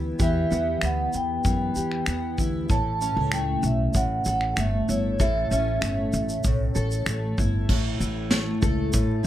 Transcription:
0.00 0.15 D2 medium
0.00 0.18 E3 medium
0.00 0.49 B3 medium
0.00 2.39 E4 medium
0.00 0.18 G4 medium
0.19 0.45 E2 medium
0.19 1.44 E3 medium
0.19 1.74 G4 medium
0.19 0.53 E5 medium
0.19 kick loud
0.19 shaker medium
0.50 0.77 E2 medium
0.50 0.80 B3 medium
0.50 0.82 E5 medium
0.50 shaker soft
0.81 1.08 D2 medium
0.81 2.07 B3 medium
0.81 1.13 F#5 medium
0.81 finger snap medium
0.81 shaker medium
1.13 1.40 E2 medium
1.13 2.36 G5 medium
1.13 shaker soft
1.45 1.71 F#2 medium
1.45 3.32 E3 medium
1.45 kick medium
1.45 shaker medium
1.76 2.02 E2 medium
1.76 2.70 G4 medium
1.76 shaker soft
1.92 finger snap soft
2.06 2.38 E2 medium
2.06 2.76 B3 medium
2.06 finger snap loud
2.06 shaker medium
2.38 2.64 D2 medium
2.38 4.89 E4 medium
2.38 kick medium
2.38 shaker medium
2.69 3.08 A1 medium
2.69 3.93 A2 medium
2.69 4.26 A4 medium
2.69 3.01 A5 loud
2.69 kick loud
2.69 shaker medium
3.01 5.51 C#4 medium
3.01 3.34 A5 medium
3.01 shaker medium
3.17 3.55 C#2 medium
3.32 4.55 A3 medium
3.32 3.62 G5 medium
3.32 finger snap loud
3.32 shaker medium
3.63 3.89 B1 loud
3.63 3.97 E5 medium
3.63 shaker medium
3.94 4.21 A1 medium
3.94 5.18 A2 medium
3.94 4.26 F#5 medium
3.94 kick medium
3.94 shaker medium
4.25 4.52 A1 medium
4.25 5.20 A4 medium
4.25 4.56 F#5 medium
4.25 shaker soft
4.41 finger snap soft
4.56 4.83 G1 medium
4.56 5.81 A3 medium
4.56 4.90 E5 medium
4.56 finger snap loud
4.56 shaker medium
4.89 5.14 G1 medium
4.89 7.37 E4 medium
4.89 5.21 C#5 medium
4.89 shaker soft
5.20 5.46 A1 loud
5.20 6.43 A2 medium
5.20 6.74 A4 medium
5.20 5.49 E5 medium
5.20 kick loud
5.20 shaker medium
5.51 5.77 A1 medium
5.51 9.01 C#4 medium
5.51 6.41 E5 loud
5.51 shaker medium
5.81 6.08 G1 medium
5.81 7.06 A3 medium
5.81 finger snap medium
5.81 shaker medium
6.13 6.39 A1 loud
6.13 shaker medium
6.29 shaker soft
6.44 6.70 B1 medium
6.44 7.68 A2 medium
6.44 7.35 C#5 medium
6.44 kick medium
6.44 shaker medium
6.75 7.01 A1 medium
6.75 8.61 A4 medium
6.75 shaker soft
6.91 shaker soft
7.06 7.32 A1 medium
7.06 8.30 A3 medium
7.06 finger snap loud
7.06 shaker medium
7.38 7.64 G1 loud
7.38 7.99 E4 medium
7.38 kick medium
7.38 shaker soft
7.69 7.95 A1 medium
7.69 8.91 A2 medium
7.69 kick loud
7.69 crash loud
8.00 8.52 A1 medium
8.00 9.23 E4 medium
8.00 shaker medium
8.31 9.27 A3 medium
8.31 snare loud
8.31 shaker medium
8.62 8.88 C#2 medium
8.62 9.27 A4 medium
8.62 kick medium
8.62 shaker medium
8.93 9.27 A2 medium
8.93 9.19 A2 loud
8.93 kick loud
8.93 shaker medium
9.23 9.27 E4 medium

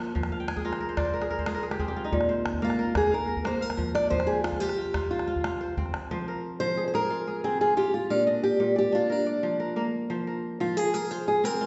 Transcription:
0.00 0.20 A#2 medium
0.00 0.14 F3 medium
0.00 1.42 A#3 medium
0.00 0.60 A#4 medium
0.00 0.32 F5 medium
0.15 2.18 F3 medium
0.15 calabash thump medium
0.23 calabash click medium
0.32 1.32 F5 medium
0.40 0.62 G5 medium
0.48 1.38 G#5 medium
0.48 calabash click medium
0.56 1.21 G#4 medium
0.56 calabash thump soft
0.65 0.97 F4 medium
0.65 0.80 A#4 medium
0.72 0.88 C5 medium
0.72 calabash click soft
0.80 1.13 A#4 medium
0.89 1.05 C5 medium
0.97 1.46 F4 medium
0.97 2.10 D5 medium
0.97 calabash thump medium
0.97 calabash click medium
1.05 1.38 C5 medium
1.05 calabash click soft
1.14 1.30 A#4 medium
1.22 1.47 G#4 medium
1.22 calabash click medium
1.30 1.54 A#4 medium
1.39 2.28 C5 medium
1.39 calabash thump medium
1.46 1.96 F4 medium
1.46 1.63 G#4 medium
1.46 calabash click medium
1.55 2.78 A#4 medium
1.63 1.79 G#4 medium
1.71 1.88 G4 medium
1.71 calabash click medium
1.79 3.59 C4 medium
1.79 3.16 G#4 medium
1.79 calabash thump medium
1.79 calabash click soft
1.88 3.29 G4 medium
1.97 3.48 F4 medium
2.04 3.67 D#4 medium
2.12 4.16 A#2 medium
2.12 calabash thump medium
2.21 calabash click soft
2.29 3.48 C5 medium
2.46 calabash click medium
2.54 calabash thump soft
2.62 2.95 A#3 medium
2.62 2.97 F4 medium
2.62 3.11 F5 medium
2.70 calabash click soft
2.79 3.27 A#4 medium
2.95 3.44 A#3 medium
2.95 3.13 G#4 medium
2.95 calabash thump medium
2.95 calabash click medium
3.04 calabash click soft
3.11 3.46 A#4 medium
3.11 3.60 F5 medium
3.28 4.55 A#4 medium
3.37 calabash thump medium
3.45 5.38 A#3 medium
3.45 3.62 C5 medium
3.45 calabash click medium
3.61 3.94 A#4 medium
3.61 4.61 F5 medium
3.70 calabash click medium
3.77 4.09 F3 medium
3.77 calabash thump medium
3.77 calabash click soft
3.95 4.10 D5 medium
3.95 calabash click medium
4.10 6.10 F3 medium
4.10 4.28 C5 medium
4.10 calabash thump medium
4.20 calabash click medium
4.27 5.70 G4 medium
4.27 4.44 G#4 medium
4.44 4.60 F4 medium
4.44 calabash click medium
4.52 calabash thump soft
4.60 4.78 F4 medium
4.60 5.10 G4 medium
4.60 5.11 C5 medium
4.69 calabash click soft
4.78 4.94 F4 medium
4.86 calabash click soft
4.94 5.27 F4 medium
4.94 calabash thump medium
4.94 calabash click medium
5.11 5.73 F4 medium
5.11 5.60 C5 medium
5.19 calabash click soft
5.28 5.44 F4 medium
5.36 calabash thump medium
5.44 6.96 F4 medium
5.44 calabash click medium
5.61 6.11 C5 medium
5.61 calabash click soft
5.77 7.44 C4 medium
5.77 calabash thump medium
5.86 calabash click soft
5.94 calabash click medium
6.11 6.59 F3 medium
6.11 7.30 C5 medium
6.28 7.55 A#4 medium
6.60 8.15 F3 medium
6.60 6.86 C5 loud
6.77 6.93 G#4 medium
6.88 6.94 C5 medium
6.94 7.27 G#4 medium
6.94 7.44 A#4 loud
7.10 7.60 F4 medium
7.27 8.64 G#4 medium
7.44 9.24 C4 medium
7.44 7.60 G#4 medium
7.61 7.77 F4 medium
7.61 7.77 G#4 medium
7.77 9.29 F4 medium
7.77 7.92 G4 medium
7.94 8.10 F4 medium
8.10 8.59 A#2 medium
8.10 8.26 D4 medium
8.10 9.10 F5 medium
8.27 8.44 D4 medium
8.27 8.82 D#5 medium
8.43 8.77 G4 medium
8.60 10.15 A#2 medium
8.76 8.95 G4 medium
8.76 9.26 D5 medium
8.92 10.60 D4 medium
8.92 9.12 F4 medium
9.10 9.78 D4 medium
9.10 9.59 A#4 medium
9.27 10.37 D5 medium
9.43 10.09 F3 medium
9.60 9.76 A#4 medium
9.76 11.66 A#3 medium
9.76 10.27 A#4 medium
10.10 10.59 F3 medium
10.10 11.29 C5 medium
10.27 11.54 A#4 medium
10.60 11.66 F3 medium
10.60 10.77 F4 medium
10.77 10.94 G#4 medium
10.94 11.27 G#4 medium
10.94 11.11 A#4 loud
11.11 11.60 F4 medium
11.11 11.27 C5 loud
11.28 11.66 G#4 medium
11.28 11.45 G#4 medium
11.44 11.66 C4 medium
11.44 11.66 A#4 loud
11.61 11.66 F4 medium

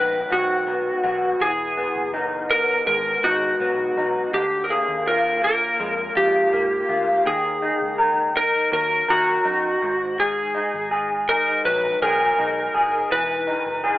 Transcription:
0.00 0.24 A#1 medium
0.00 1.41 G#2 medium
0.00 1.40 D#3 medium
0.00 0.66 B3 medium
0.00 0.29 F#4 medium
0.00 0.33 B4 loud
0.30 0.90 B1 medium
0.30 1.02 F#4 medium
0.30 1.45 F#4 loud
0.67 1.77 B3 medium
1.04 1.33 B1 medium
1.04 1.48 F#4 medium
1.40 1.85 E1 loud
1.40 4.33 E3 medium
1.40 2.10 G#4 medium
1.77 2.49 B3 medium
1.96 2.83 F#1 medium
2.14 3.23 D#4 medium
2.50 3.59 B3 medium
2.50 2.86 A#4 loud
2.86 3.16 G#1 medium
2.86 4.73 G#3 medium
2.86 3.25 A#4 loud
3.24 3.53 G#1 loud
3.24 3.96 D#4 medium
3.24 4.34 F#4 loud
3.60 3.89 B1 medium
3.60 4.41 B3 medium
3.97 4.26 B1 medium
3.97 4.41 D#4 medium
4.33 4.77 D2 loud
4.33 7.25 D3 medium
4.33 4.64 G4 loud
4.64 4.70 A#4 medium
4.70 5.42 A#3 medium
4.70 5.08 G#4 medium
4.88 5.76 D#2 medium
5.06 6.15 F4 medium
5.06 5.43 A#4 medium
5.43 6.52 A#3 medium
5.43 6.13 A#4 loud
5.80 6.09 F2 loud
5.80 7.33 G#3 medium
6.16 6.45 F2 medium
6.16 6.88 F4 medium
6.16 7.27 G4 medium
6.53 6.82 G#2 loud
6.53 9.85 A#3 medium
6.89 7.19 D2 loud
6.89 7.33 F4 medium
7.25 7.70 D#2 loud
7.25 10.75 D#3 medium
7.25 7.96 G#4 medium
7.62 8.35 D#4 medium
7.81 8.68 C#2 medium
7.98 9.07 A#4 medium
8.35 9.45 D#4 medium
8.35 8.72 A#4 loud
8.72 9.02 D#2 medium
8.72 10.21 F#3 medium
8.72 9.11 A#4 loud
9.08 9.38 D#2 medium
9.08 10.23 F#4 medium
9.08 9.89 A#4 medium
9.45 9.75 F#2 loud
9.45 10.54 D#4 medium
9.82 10.55 G#1 loud
9.82 10.17 G#2 medium
10.18 13.11 G#2 medium
10.18 10.88 G#4 medium
10.55 11.28 D#4 medium
10.74 11.61 G#1 medium
10.91 12.02 G#4 medium
11.29 12.38 D#4 medium
11.29 11.65 A#4 loud
11.65 11.94 A#1 loud
11.65 13.19 F#3 medium
11.65 12.02 B4 loud
12.02 12.31 B1 medium
12.02 12.74 G#4 medium
12.02 13.12 A#4 loud
12.38 12.67 B1 medium
12.38 13.47 D#4 medium
12.74 13.04 F#1 medium
12.74 13.83 G#4 medium
13.11 13.55 E1 loud
13.11 13.98 E3 medium
13.11 13.81 B4 medium
13.47 13.98 D#4 medium
13.66 13.98 F#1 medium
13.84 13.98 G#4 medium

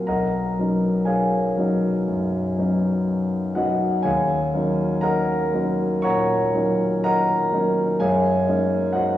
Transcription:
0.07 0.56 B1 soft
0.07 1.03 A#4 soft
0.07 1.03 D#5 soft
0.07 1.03 F#5 soft
0.07 1.07 A#5 medium
0.59 1.54 F#3 soft
0.59 1.54 B3 soft
0.59 1.54 C#4 soft
0.59 1.55 D#4 soft
1.05 3.04 G#4 soft
1.05 3.04 C#5 soft
1.05 3.03 F5 soft
1.05 3.07 G#5 medium
1.57 2.04 F#3 soft
1.57 2.04 B3 soft
1.57 2.04 C#4 soft
1.57 2.04 D#4 soft
2.08 2.57 F#2 soft
2.58 3.52 F#3 soft
2.58 3.53 B3 soft
2.58 3.53 C#4 soft
2.58 3.53 D#4 soft
3.55 4.01 F#3 soft
3.55 4.01 B3 soft
3.55 4.01 C#4 soft
3.55 4.01 D#4 soft
3.55 4.01 F#4 soft
3.55 4.01 B4 soft
3.55 4.01 D#5 soft
3.55 4.04 F#5 medium
4.03 4.52 D#2 soft
4.03 4.98 G#4 soft
4.03 4.98 C#5 medium
4.03 4.99 F5 soft
4.03 5.02 G#5 medium
4.54 5.49 F#3 soft
4.54 5.48 A#3 soft
4.54 5.48 C#4 soft
4.54 5.49 D#4 soft
5.01 5.98 A#4 medium
5.01 5.98 D#5 soft
5.01 5.98 F#5 soft
5.01 6.01 A#5 medium
5.53 5.99 F#3 soft
5.53 5.99 A#3 soft
5.53 5.99 C#4 soft
5.53 5.99 D#4 soft
6.02 6.52 A#2 soft
6.02 7.00 C#5 medium
6.02 6.99 F#5 medium
6.02 7.00 A#5 medium
6.02 7.03 C#6 medium
6.55 7.49 F#3 soft
6.55 7.49 A#3 soft
6.55 7.49 C#4 soft
6.55 7.49 D#4 soft
7.04 7.97 A#4 medium
7.04 7.97 D#5 medium
7.04 7.97 F#5 medium
7.04 8.01 A#5 medium
7.52 7.96 F#3 soft
7.52 7.96 A#3 soft
7.52 7.97 C#4 soft
7.52 7.97 D#4 soft
8.00 8.47 F#2 medium
8.00 8.91 G#4 medium
8.00 8.91 C#5 medium
8.00 8.91 F5 medium
8.00 8.95 G#5 medium
8.47 9.18 G#3 soft
8.47 9.18 A#3 soft
8.47 9.18 C#4 soft
8.47 9.18 D#4 soft
8.93 9.18 F#4 soft
8.93 9.18 C5 soft
8.93 9.18 D#5 soft
8.93 9.18 F#5 medium

